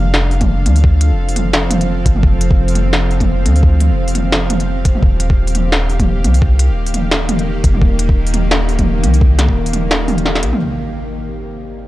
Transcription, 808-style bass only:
0, 0, Header, 1, 2, 480
1, 0, Start_track
1, 0, Tempo, 348837
1, 1153, Time_signature, 4, 2, 24, 8
1, 16344, End_track
2, 0, Start_track
2, 0, Title_t, "808-style bass"
2, 0, Program_c, 0, 38
2, 0, Note_on_c, 0, 29, 106
2, 906, Note_on_c, 0, 38, 101
2, 927, Note_off_c, 0, 29, 0
2, 1528, Note_on_c, 0, 29, 80
2, 1549, Note_off_c, 0, 38, 0
2, 2819, Note_off_c, 0, 29, 0
2, 2829, Note_on_c, 0, 31, 91
2, 3055, Note_off_c, 0, 31, 0
2, 3072, Note_on_c, 0, 29, 103
2, 4753, Note_on_c, 0, 38, 102
2, 4774, Note_off_c, 0, 29, 0
2, 5372, Note_on_c, 0, 29, 82
2, 5393, Note_off_c, 0, 38, 0
2, 6676, Note_on_c, 0, 27, 102
2, 6697, Note_off_c, 0, 29, 0
2, 6800, Note_off_c, 0, 27, 0
2, 6914, Note_on_c, 0, 27, 104
2, 8594, Note_on_c, 0, 36, 101
2, 8614, Note_off_c, 0, 27, 0
2, 9209, Note_on_c, 0, 27, 80
2, 9230, Note_off_c, 0, 36, 0
2, 10499, Note_off_c, 0, 27, 0
2, 10514, Note_on_c, 0, 29, 92
2, 10737, Note_off_c, 0, 29, 0
2, 10752, Note_on_c, 0, 27, 105
2, 12436, Note_on_c, 0, 36, 100
2, 12457, Note_off_c, 0, 27, 0
2, 13052, Note_on_c, 0, 27, 83
2, 13073, Note_off_c, 0, 36, 0
2, 14351, Note_on_c, 0, 34, 97
2, 14372, Note_off_c, 0, 27, 0
2, 14478, Note_off_c, 0, 34, 0
2, 16344, End_track
0, 0, End_of_file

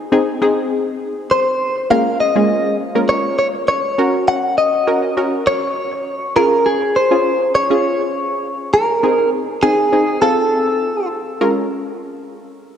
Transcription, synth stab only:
0, 0, Header, 1, 2, 480
1, 0, Start_track
1, 0, Key_signature, -5, "minor"
1, 0, Tempo, 594059
1, 1539, Time_signature, 4, 2, 24, 8
1, 10321, End_track
2, 0, Start_track
2, 0, Title_t, "Synth stab"
2, 0, Program_c, 0, 62
2, 97, Note_on_c, 0, 60, 90
2, 99, Note_on_c, 0, 63, 82
2, 101, Note_on_c, 0, 68, 103
2, 275, Note_off_c, 0, 60, 0
2, 276, Note_off_c, 0, 63, 0
2, 277, Note_off_c, 0, 68, 0
2, 337, Note_on_c, 0, 60, 94
2, 340, Note_on_c, 0, 63, 86
2, 342, Note_on_c, 0, 68, 102
2, 1032, Note_off_c, 0, 60, 0
2, 1034, Note_off_c, 0, 63, 0
2, 1035, Note_off_c, 0, 68, 0
2, 1537, Note_on_c, 0, 56, 83
2, 1537, Note_on_c, 0, 58, 73
2, 1539, Note_on_c, 0, 61, 74
2, 1540, Note_on_c, 0, 65, 71
2, 1540, Note_on_c, 0, 70, 88
2, 1799, Note_off_c, 0, 56, 0
2, 1799, Note_off_c, 0, 58, 0
2, 1800, Note_off_c, 0, 61, 0
2, 1800, Note_off_c, 0, 65, 0
2, 1801, Note_off_c, 0, 70, 0
2, 1903, Note_on_c, 0, 56, 81
2, 1905, Note_on_c, 0, 58, 74
2, 1906, Note_on_c, 0, 61, 74
2, 1907, Note_on_c, 0, 65, 70
2, 1908, Note_on_c, 0, 68, 83
2, 2245, Note_off_c, 0, 56, 0
2, 2246, Note_off_c, 0, 58, 0
2, 2246, Note_off_c, 0, 61, 0
2, 2247, Note_off_c, 0, 65, 0
2, 2247, Note_off_c, 0, 68, 0
2, 2384, Note_on_c, 0, 56, 78
2, 2385, Note_on_c, 0, 58, 71
2, 2386, Note_on_c, 0, 61, 74
2, 2386, Note_on_c, 0, 65, 73
2, 2388, Note_on_c, 0, 70, 89
2, 3076, Note_off_c, 0, 56, 0
2, 3076, Note_off_c, 0, 58, 0
2, 3077, Note_off_c, 0, 61, 0
2, 3077, Note_off_c, 0, 65, 0
2, 3078, Note_off_c, 0, 70, 0
2, 3218, Note_on_c, 0, 61, 86
2, 3221, Note_on_c, 0, 66, 81
2, 3223, Note_on_c, 0, 70, 91
2, 3801, Note_off_c, 0, 61, 0
2, 3802, Note_off_c, 0, 66, 0
2, 3803, Note_off_c, 0, 70, 0
2, 3937, Note_on_c, 0, 61, 79
2, 3938, Note_on_c, 0, 66, 71
2, 3940, Note_on_c, 0, 70, 86
2, 4115, Note_off_c, 0, 61, 0
2, 4116, Note_off_c, 0, 66, 0
2, 4117, Note_off_c, 0, 70, 0
2, 4177, Note_on_c, 0, 61, 78
2, 4180, Note_on_c, 0, 66, 74
2, 4181, Note_on_c, 0, 70, 87
2, 4872, Note_off_c, 0, 61, 0
2, 4874, Note_off_c, 0, 66, 0
2, 4874, Note_off_c, 0, 70, 0
2, 5138, Note_on_c, 0, 61, 85
2, 5140, Note_on_c, 0, 65, 77
2, 5141, Note_on_c, 0, 68, 96
2, 5619, Note_off_c, 0, 61, 0
2, 5620, Note_off_c, 0, 65, 0
2, 5620, Note_off_c, 0, 68, 0
2, 5745, Note_on_c, 0, 61, 80
2, 5746, Note_on_c, 0, 65, 71
2, 5749, Note_on_c, 0, 68, 82
2, 6086, Note_off_c, 0, 61, 0
2, 6086, Note_off_c, 0, 65, 0
2, 6087, Note_off_c, 0, 68, 0
2, 6224, Note_on_c, 0, 61, 83
2, 6227, Note_on_c, 0, 65, 74
2, 6229, Note_on_c, 0, 68, 88
2, 6916, Note_off_c, 0, 61, 0
2, 6917, Note_off_c, 0, 65, 0
2, 6918, Note_off_c, 0, 68, 0
2, 7298, Note_on_c, 0, 60, 84
2, 7299, Note_on_c, 0, 63, 73
2, 7302, Note_on_c, 0, 68, 89
2, 7651, Note_off_c, 0, 60, 0
2, 7652, Note_off_c, 0, 63, 0
2, 7653, Note_off_c, 0, 68, 0
2, 7779, Note_on_c, 0, 60, 78
2, 7781, Note_on_c, 0, 63, 73
2, 7783, Note_on_c, 0, 68, 85
2, 7957, Note_off_c, 0, 60, 0
2, 7957, Note_off_c, 0, 63, 0
2, 7959, Note_off_c, 0, 68, 0
2, 8019, Note_on_c, 0, 60, 80
2, 8021, Note_on_c, 0, 63, 72
2, 8023, Note_on_c, 0, 68, 85
2, 8249, Note_off_c, 0, 60, 0
2, 8259, Note_on_c, 0, 60, 84
2, 8260, Note_off_c, 0, 63, 0
2, 8261, Note_off_c, 0, 68, 0
2, 8261, Note_on_c, 0, 65, 78
2, 8262, Note_on_c, 0, 69, 97
2, 9030, Note_off_c, 0, 60, 0
2, 9031, Note_off_c, 0, 65, 0
2, 9032, Note_off_c, 0, 69, 0
2, 9220, Note_on_c, 0, 56, 86
2, 9220, Note_on_c, 0, 61, 81
2, 9220, Note_on_c, 0, 65, 82
2, 9220, Note_on_c, 0, 70, 98
2, 9443, Note_off_c, 0, 56, 0
2, 9443, Note_off_c, 0, 61, 0
2, 9443, Note_off_c, 0, 65, 0
2, 9443, Note_off_c, 0, 70, 0
2, 10321, End_track
0, 0, End_of_file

